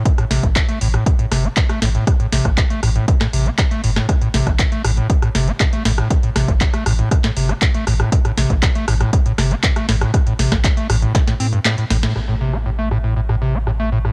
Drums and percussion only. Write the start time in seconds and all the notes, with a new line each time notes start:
0.06 kick, closed hi-hat
0.18 cross-stick, closed hi-hat
0.31 snare, open hi-hat
0.43 kick, closed hi-hat
0.56 kick, cross-stick, clap, closed hi-hat
0.69 closed hi-hat
0.81 open hi-hat
0.94 cross-stick, closed hi-hat
1.06 kick, closed hi-hat
1.19 closed hi-hat
1.32 cross-stick, snare, open hi-hat
1.57 kick, clap, closed hi-hat
1.69 cross-stick, closed hi-hat
1.82 snare, open hi-hat
1.95 closed hi-hat
2.07 kick, cross-stick, closed hi-hat
2.20 closed hi-hat
2.32 snare, open hi-hat
2.45 kick, cross-stick, closed hi-hat
2.58 kick, clap, closed hi-hat
2.70 closed hi-hat
2.83 cross-stick, open hi-hat
2.96 closed hi-hat
3.08 kick, closed hi-hat
3.21 cross-stick, snare, clap, closed hi-hat
3.33 open hi-hat
3.58 kick, cross-stick, clap, closed hi-hat
3.71 closed hi-hat
3.84 open hi-hat
3.96 cross-stick, snare
4.09 kick, cross-stick, closed hi-hat
4.21 closed hi-hat
4.34 snare, open hi-hat
4.47 kick, cross-stick, closed hi-hat
4.59 kick, clap, closed hi-hat
4.72 closed hi-hat
4.85 cross-stick, open hi-hat
4.97 closed hi-hat
5.10 kick, closed hi-hat
5.22 cross-stick, closed hi-hat
5.35 snare, open hi-hat
5.48 closed hi-hat
5.60 kick, cross-stick, clap, closed hi-hat
5.73 closed hi-hat
5.85 snare, open hi-hat
5.98 cross-stick, closed hi-hat
6.11 kick, closed hi-hat
6.23 closed hi-hat
6.36 cross-stick, snare, open hi-hat
6.48 kick, closed hi-hat
6.61 kick, clap, closed hi-hat
6.74 cross-stick, closed hi-hat
6.86 cross-stick, open hi-hat
7.11 kick, cross-stick, closed hi-hat
7.24 snare, clap, closed hi-hat
7.37 open hi-hat
7.49 cross-stick, closed hi-hat
7.62 kick, clap, closed hi-hat
7.74 closed hi-hat
7.87 cross-stick, open hi-hat
8.00 cross-stick, closed hi-hat
8.12 kick, closed hi-hat
8.25 cross-stick, closed hi-hat
8.37 snare, open hi-hat
8.50 kick, closed hi-hat
8.63 kick, cross-stick, clap, closed hi-hat
8.75 closed hi-hat
8.88 cross-stick, open hi-hat
9.01 cross-stick, closed hi-hat
9.13 kick, closed hi-hat
9.26 closed hi-hat
9.38 cross-stick, snare, open hi-hat
9.51 closed hi-hat
9.63 kick, clap, closed hi-hat
9.76 cross-stick, closed hi-hat
9.89 snare, open hi-hat
10.01 cross-stick, closed hi-hat
10.14 kick, cross-stick, closed hi-hat
10.27 closed hi-hat
10.39 snare, open hi-hat
10.52 kick, cross-stick, snare
10.64 kick, clap, closed hi-hat
10.77 closed hi-hat
10.90 cross-stick, open hi-hat
11.02 closed hi-hat
11.15 kick, snare, closed hi-hat
11.28 snare, closed hi-hat
11.40 open hi-hat
11.53 closed hi-hat
11.65 snare, clap, closed hi-hat
11.78 closed hi-hat
11.90 snare, open hi-hat
12.03 snare, closed hi-hat
12.16 cross-stick
12.54 cross-stick
12.66 closed hi-hat
12.91 cross-stick
13.04 closed hi-hat
13.16 closed hi-hat
13.29 cross-stick
13.54 closed hi-hat
13.67 cross-stick, closed hi-hat
14.05 cross-stick, closed hi-hat